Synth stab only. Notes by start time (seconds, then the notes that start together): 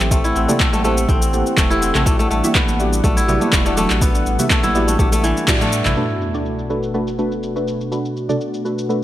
0.11 E4 G4 A4 C5
0.49 E4 G4 A4 D5
0.84 E4 G4 A4 C5
1.09 E4 G4 A4 C5
1.33 E4 G4 A4 C5
1.71 E4 G4 A4 C5
2.06 E4 F#4 G4 D5
2.44 E4 F#4 G4 E5
2.80 E4 F#4 G4 D5
3.04 E4 F#4 G4 D5
3.28 E4 F#4 G4 D5
3.66 E4 F#4 G4 D5
4.02 E4 F#4 G4 D5
4.39 E4 F#4 G4 E5
4.75 E4 F#4 G4 D5
4.99 E4 F#4 G4 D5
5.48 E4 F#4 G4 E5
5.97 A3 D4 F#4 A4 B4
6.34 A3 D4 F#4 A4 D5
6.70 A3 D4 F#4 A4 B4
6.94 A3 D4 F#4 A4 B4
7.18 A3 D4 F#4 A4 B4
7.56 A3 D4 F#4 A4 B4
7.92 A3 D4 F#4 A4 B4
8.29 A3 D4 F#4 A4 D5
8.65 A3 D4 F#4 A4 B4
8.89 A3 D4 F#4 A4 B4